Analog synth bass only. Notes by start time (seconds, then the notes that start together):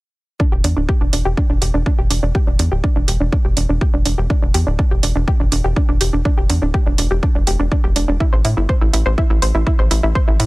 0.52 E1
0.64 E2
0.77 D1
1.01 E1
1.13 E1
1.25 E1
1.50 E1
1.62 E1
1.74 E1
1.99 E1
2.10 E1
2.23 E1
2.47 E1
2.59 E2
2.72 D1
2.96 E1
3.08 E1
3.20 E1
3.45 E1
3.57 E1
3.69 E1
3.94 E1
4.06 E1
4.18 E1
4.42 E1
4.55 E2
4.67 D1
4.91 E1
5.03 E1
5.16 E1
5.40 E1
5.52 E1
5.64 E1
5.89 E1
6.01 E1
6.13 E1
6.38 E1
6.50 E2
6.62 D1
6.86 E1
6.98 E1
7.11 E1
7.35 E1
7.47 E1
7.59 E1
7.84 E1
7.96 E1
8.08 E1
8.33 A1
8.45 A2
8.57 G1
8.81 A1
8.93 A1
9.06 A1
9.30 A1
9.42 A1
9.55 A1
9.79 A1
9.91 A1
10.03 A1
10.28 A1
10.40 A2